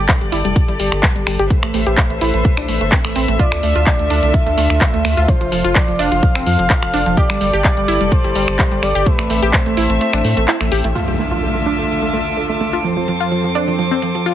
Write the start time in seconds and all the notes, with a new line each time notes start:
Already playing: G4 A4 D5
0.09 G3, kick, clap, closed hi-hat
0.21 G1 G3, closed hi-hat
0.32 G1 E4, open hi-hat
0.45 F1 G3, closed hi-hat
0.56 kick, closed hi-hat
0.68 G1 G3, closed hi-hat
0.80 G1 G3, open hi-hat
0.92 G1, finger snap, closed hi-hat
1.03 G3, kick, clap, closed hi-hat
1.16 G1 G3, closed hi-hat
1.27 G1 G3, finger snap, open hi-hat
1.39 G1 G4, closed hi-hat
1.50 A3 A4 B4 C5 E5, kick, closed hi-hat
1.63 A1 A3, finger snap, closed hi-hat
1.74 A1 A3, open hi-hat
1.86 A1 G4, closed hi-hat
1.97 A3, kick, clap, closed hi-hat
2.10 A1 A3, closed hi-hat
2.21 A1 E4, open hi-hat
2.34 A1 A3, closed hi-hat
2.45 A3, kick, closed hi-hat
2.57 B1 D4, finger snap, closed hi-hat
2.68 A1 A3, open hi-hat
2.81 G1 A3, closed hi-hat
2.92 C4, kick, clap, closed hi-hat
3.05 A1 A3, finger snap, closed hi-hat
3.16 A1 C4, open hi-hat
3.28 A1 A3, closed hi-hat
3.39 D3 D4 F4 A4 D5, kick, closed hi-hat
3.52 D2 A3, finger snap, closed hi-hat
3.63 D2 A3, open hi-hat
3.76 D2 F4, closed hi-hat
3.86 A3 D5, kick, clap, closed hi-hat
3.99 D2 A3, closed hi-hat
4.10 D2 D4, open hi-hat
4.23 C2 A3, closed hi-hat
4.34 E5, kick, closed hi-hat
4.46 D2 A3, closed hi-hat
4.58 D2 A3, open hi-hat
4.70 D2, finger snap, closed hi-hat
4.81 A3, kick, clap, closed hi-hat
4.94 D2 A3, closed hi-hat
5.05 D2 A3, finger snap, open hi-hat
5.17 D2 F4, closed hi-hat
5.28 F3 A4 C5, kick, closed hi-hat
5.41 F1 F3, closed hi-hat
5.52 F1 F3, open hi-hat
5.64 F1 F4, closed hi-hat
5.75 F3 D5, kick, clap, closed hi-hat
5.88 F1 F3, closed hi-hat
5.99 F1 D4 F5, open hi-hat
6.12 F1 F3, closed hi-hat
6.23 F3, kick, closed hi-hat
6.35 F1 C4, finger snap, closed hi-hat
6.46 F2 F3 F5, open hi-hat
6.59 F1 F3, closed hi-hat
6.70 F4 F5, kick, clap, closed hi-hat
6.82 F1 F3, finger snap, closed hi-hat
6.94 F1 D4, open hi-hat
7.06 F1 F3, closed hi-hat
7.17 G4 D5, kick, closed hi-hat
7.30 G1 G3, finger snap, closed hi-hat
7.41 G1 G3, open hi-hat
7.53 G1 G4, closed hi-hat
7.64 G3 D5, kick, clap, closed hi-hat
7.77 G1 G3, closed hi-hat
7.88 G1 E4, open hi-hat
8.01 F1 G3, closed hi-hat
8.12 C5, kick, closed hi-hat
8.24 G1 G3, closed hi-hat
8.35 G1 G3, open hi-hat
8.48 G1, finger snap, closed hi-hat
8.59 G3, kick, clap, closed hi-hat
8.72 G1 G3, closed hi-hat
8.83 G1 G3 D5, finger snap, open hi-hat
8.95 G1 G4, closed hi-hat
9.06 A3 C4 B4 E5, kick, closed hi-hat
9.19 A1 A3, finger snap, closed hi-hat
9.30 A1 A3, open hi-hat
9.42 A1 G4, closed hi-hat
9.53 A3 C5, kick, clap, closed hi-hat
9.66 A1 A3, closed hi-hat
9.77 A1 E4, open hi-hat
9.90 A1 A3, closed hi-hat
10.01 A3, closed hi-hat
10.13 A1 D4, finger snap, closed hi-hat
10.24 A2 A3, open hi-hat
10.37 A1 A3, closed hi-hat
10.48 E4, clap, closed hi-hat
10.61 A1 A3, finger snap, closed hi-hat
10.72 A1 G4, open hi-hat
10.84 A1 A3, closed hi-hat
10.95 D2 D3 F4 A4 E5 D6, impact
11.08 A3
11.19 A3, closed hi-hat
11.31 F4
11.43 A3
11.55 A3
11.66 D4, closed hi-hat
11.79 A3
11.90 closed hi-hat
12.02 A3
12.13 A3, closed hi-hat
12.37 A3, closed hi-hat
12.49 A3
12.61 A3, closed hi-hat
12.73 F4, closed hi-hat
12.84 F2 F3 C4 C5, closed hi-hat
12.97 F3, closed hi-hat
13.08 F3, closed hi-hat
13.20 F4, closed hi-hat
13.32 F3, closed hi-hat
13.44 F3, closed hi-hat
13.55 D4, closed hi-hat
13.68 F3, closed hi-hat
13.79 F3, closed hi-hat
13.91 C4, closed hi-hat
14.02 F3, closed hi-hat
14.15 F3, closed hi-hat
14.26 F4, closed hi-hat